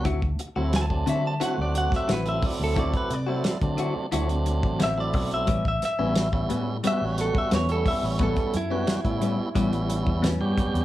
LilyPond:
<<
  \new Staff \with { instrumentName = "Clean electric guitar" } { \time 4/4 \key a \mixolydian \tempo 4 = 88 a''8 r8 a''8 e''16 a''16 fis''16 d''16 fis''16 e''16 b'16 e''16 d''16 a'16 | d''16 b'16 d''2 r8 e''16 d''8 e''16~ | e''16 e''16 e''4 r8 e''16 cis''16 a'16 e''16 cis''16 a'16 e''16 cis''16 | a'8 e'2. r8 | }
  \new Staff \with { instrumentName = "Clean electric guitar" } { \time 4/4 \key a \mixolydian <d c' e' fis'>16 r8 <c' e' fis'>16 r8 <d c' e' fis'>16 r16 <d c' e' fis'>16 r8. <d c' e' fis'>16 r8. | <d c' e' fis'>16 r8 <c' e' fis'>16 r8 <d c' e' fis'>16 r16 <d c' e' fis'>16 r8. <d c' e' fis'>16 r8. | <a, g b cis'>16 r8 <g b cis'>16 r8 <a, g b cis'>16 r16 <a, g b cis'>16 r8. <a, g b cis'>16 r8. | <a, g b cis'>16 r8 <g b cis'>16 r8 <a, g b cis'>16 r16 <a, g b cis'>16 r8. <a, g b cis'>16 r8. | }
  \new Staff \with { instrumentName = "Tonewheel organ" } { \time 4/4 \key a \mixolydian r8. <fis a c' e'>8 <fis a c' d'>8. <fis a c' fis'>4 r16 <fis a c' e'>8.~ | <fis a c' e'>8 r16 <fis a c' e'>8 <fis a c' d'>8. <fis a c' d'>4 r16 <fis a c' e'>8. | r8. <g b cis' e'>8 <g b cis' e'>8. <g b cis' fis'>4 r16 <g b cis' e'>8.~ | <g b cis' e'>8 r16 <g b cis' fis'>8 <g b cis' e'>8. <g b cis' e'>4 r16 <g b cis' g'>8. | }
  \new Staff \with { instrumentName = "Fingered electric bass" } { \clef bass \time 4/4 \key a \mixolydian d,8 r16 d,8. d8 r16 d,8 r16 a,,8 r16 d,16~ | d,16 r16 c8 r16 d8 r16 d,8. a,,8. b,,8 | a,,8 r16 a,,8. a,8 r16 a,,8 r16 e,8 r16 a,,16~ | a,,16 r16 fis,8 r16 a,8 r16 a,,8. e,8 g,16 fis,16 e,16 | }
  \new DrumStaff \with { instrumentName = "Drums" } \drummode { \time 4/4 <hh bd>16 bd16 hh8 <hh sn>16 bd16 hh8 hh8 hh16 <bd sn>16 <hh sn>16 hh16 <hho bd>8 | <hh bd>16 <hh bd>16 hh8 <hh sn>16 <hh bd>16 hh8 hh16 hh16 hh16 bd16 <hh sn>8 <hho bd>16 hh16 | <hh bd>16 bd16 <hh sn>8 <hh sn>16 bd16 hh8 hh8 <hh sn>16 bd16 <hh sn>16 hh16 <hho bd>8 | <hh bd>16 <hh bd>16 hh8 <hh sn>16 <hh bd>16 hh8 <hh bd>16 hh16 hh16 bd16 <hh sn>8 <hh bd>16 hh16 | }
>>